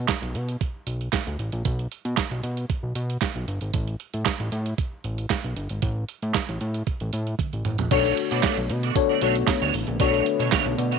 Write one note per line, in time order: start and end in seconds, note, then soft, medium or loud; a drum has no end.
0.08 kick loud
0.08 snare loud
0.08 clap medium
0.08 closed hi-hat medium
0.22 0.36 B1 medium
0.22 closed hi-hat soft
0.35 0.57 B2 loud
0.35 closed hi-hat medium
0.49 closed hi-hat soft
0.61 kick loud
0.61 closed hi-hat medium
0.87 1.09 B1 medium
0.87 closed hi-hat medium
1.01 closed hi-hat soft
1.13 kick medium
1.13 snare medium
1.13 clap medium
1.13 closed hi-hat medium
1.27 1.37 D2 medium
1.27 closed hi-hat soft
1.39 1.51 A1 medium
1.39 closed hi-hat medium
1.52 1.63 A#1 loud
1.52 closed hi-hat soft
1.65 1.87 B1 loud
1.65 kick loud
1.65 closed hi-hat medium
1.79 closed hi-hat soft
1.92 closed hi-hat medium
2.05 2.15 B2 medium
2.05 closed hi-hat soft
2.17 kick loud
2.17 snare loud
2.17 clap medium
2.17 closed hi-hat medium
2.31 2.42 B1 medium
2.31 closed hi-hat soft
2.43 2.65 B2 medium
2.43 closed hi-hat medium
2.57 closed hi-hat soft
2.70 kick loud
2.70 closed hi-hat medium
2.83 2.93 B1 medium
2.95 3.18 B2 medium
2.95 closed hi-hat medium
3.10 closed hi-hat soft
3.22 kick loud
3.22 snare medium
3.22 clap medium
3.22 closed hi-hat medium
3.35 3.46 B1 medium
3.35 closed hi-hat soft
3.48 3.59 G1 medium
3.48 closed hi-hat medium
3.61 3.72 G#1 medium
3.61 closed hi-hat soft
3.74 3.96 A1 loud
3.74 kick loud
3.74 closed hi-hat medium
3.88 closed hi-hat soft
4.00 closed hi-hat medium
4.14 4.24 A2 medium
4.14 closed hi-hat soft
4.26 kick loud
4.26 snare loud
4.26 clap loud
4.26 closed hi-hat medium
4.40 4.50 A1 loud
4.40 closed hi-hat soft
4.52 4.74 A2 loud
4.52 closed hi-hat medium
4.66 closed hi-hat medium
4.78 kick loud
4.78 closed hi-hat medium
5.04 5.26 A1 medium
5.04 closed hi-hat medium
5.18 closed hi-hat soft
5.30 kick loud
5.30 snare medium
5.30 clap medium
5.30 closed hi-hat medium
5.44 5.55 B1 medium
5.44 closed hi-hat soft
5.56 5.68 G1 medium
5.56 closed hi-hat medium
5.69 5.81 G#1 medium
5.69 closed hi-hat soft
5.82 6.05 A1 loud
5.82 kick medium
5.82 closed hi-hat medium
6.09 closed hi-hat medium
6.22 6.33 A2 medium
6.22 closed hi-hat soft
6.34 kick loud
6.34 snare loud
6.34 clap medium
6.34 closed hi-hat medium
6.49 6.59 A1 loud
6.49 closed hi-hat soft
6.61 6.83 A2 loud
6.61 closed hi-hat medium
6.74 closed hi-hat medium
6.87 kick loud
6.87 closed hi-hat medium
7.00 7.11 A1 medium
7.00 closed hi-hat soft
7.13 7.35 A2 loud
7.13 closed hi-hat medium
7.27 closed hi-hat soft
7.39 kick loud
7.39 closed hi-hat medium
7.39 high tom soft
7.53 7.64 A1 medium
7.53 closed hi-hat soft
7.65 7.77 A1 medium
7.65 closed hi-hat medium
7.65 mid tom medium
7.78 7.90 A#1 medium
7.78 closed hi-hat soft
7.78 floor tom medium
7.91 8.13 B1 loud
7.91 10.99 D3 medium
7.91 8.15 A3 medium
7.91 10.99 A3 medium
7.91 10.99 B3 medium
7.91 8.60 D4 loud
7.91 8.16 D4 medium
7.91 8.60 F#4 medium
7.91 8.16 F#4 medium
7.91 8.60 A4 medium
7.91 8.60 C#5 loud
7.91 8.16 C#5 medium
7.91 kick loud
7.91 closed hi-hat loud
7.91 crash loud
8.05 closed hi-hat soft
8.17 muted clean electric guitar stroke soft
8.17 closed hi-hat medium
8.31 8.42 B2 loud
8.31 8.41 A3 medium
8.31 8.41 D4 medium
8.31 8.41 F#4 medium
8.31 8.41 D5 medium
8.31 closed hi-hat medium
8.43 8.57 A3 loud
8.43 8.57 D4 medium
8.43 8.57 F#4 medium
8.43 8.57 D5 medium
8.43 kick loud
8.43 snare loud
8.43 clap loud
8.43 closed hi-hat medium
8.57 8.71 B1 loud
8.57 muted clean electric guitar stroke medium
8.57 closed hi-hat soft
8.69 8.92 B2 loud
8.69 muted clean electric guitar stroke soft
8.69 closed hi-hat medium
8.83 8.94 A3 medium
8.83 8.94 D4 medium
8.83 8.93 F#4 medium
8.83 8.93 D5 medium
8.83 closed hi-hat medium
8.96 9.13 D4 loud
8.96 9.13 F#4 medium
8.96 9.13 A4 medium
8.96 9.14 C#5 loud
8.96 muted clean electric guitar stroke soft
8.96 kick loud
8.96 closed hi-hat medium
9.09 9.20 A3 medium
9.09 9.20 D4 medium
9.09 9.19 F#4 medium
9.09 9.19 D5 medium
9.21 9.44 B1 medium
9.21 9.36 A3 medium
9.21 9.73 D4 medium
9.21 9.35 D4 medium
9.21 9.73 F#4 medium
9.21 9.35 F#4 loud
9.21 9.73 A4 medium
9.21 9.73 C#5 medium
9.21 9.34 C#5 loud
9.21 closed hi-hat medium
9.35 muted clean electric guitar stroke medium
9.35 closed hi-hat medium
9.47 muted clean electric guitar stroke soft
9.47 kick loud
9.47 snare loud
9.47 clap medium
9.47 closed hi-hat medium
9.61 9.72 D2 medium
9.61 9.72 A3 medium
9.61 9.73 D4 medium
9.61 9.73 F#4 medium
9.61 9.73 C#5 medium
9.61 closed hi-hat soft
9.74 9.86 A1 medium
9.74 muted clean electric guitar stroke soft
9.74 open hi-hat medium
9.87 9.98 A#1 loud
9.87 muted clean electric guitar stroke soft
9.87 closed hi-hat medium
9.99 10.22 B1 loud
9.99 10.24 A3 medium
9.99 10.24 D4 medium
9.99 10.69 D4 loud
9.99 10.69 F#4 medium
9.99 10.24 F#4 medium
9.99 10.69 A4 medium
9.99 10.24 C#5 loud
9.99 10.69 C#5 loud
9.99 kick loud
9.99 closed hi-hat loud
10.14 closed hi-hat soft
10.26 muted clean electric guitar stroke soft
10.26 closed hi-hat medium
10.39 10.50 B2 medium
10.39 10.50 A3 medium
10.39 10.50 D4 medium
10.39 10.50 F#4 medium
10.39 10.49 C#5 medium
10.39 closed hi-hat medium
10.52 10.66 A3 medium
10.52 10.65 D4 medium
10.52 10.65 F#4 loud
10.52 10.65 C#5 loud
10.52 kick loud
10.52 snare loud
10.52 clap loud
10.52 closed hi-hat medium
10.66 10.76 B1 loud
10.66 muted clean electric guitar stroke medium
10.66 closed hi-hat soft
10.78 10.99 B2 loud
10.78 10.91 D5 medium
10.78 muted clean electric guitar stroke soft
10.78 closed hi-hat medium
10.91 10.99 A3 medium
10.91 10.99 D4 medium
10.91 10.99 F#4 medium
10.91 10.99 C#5 medium
10.91 10.99 F#5 medium
10.91 closed hi-hat medium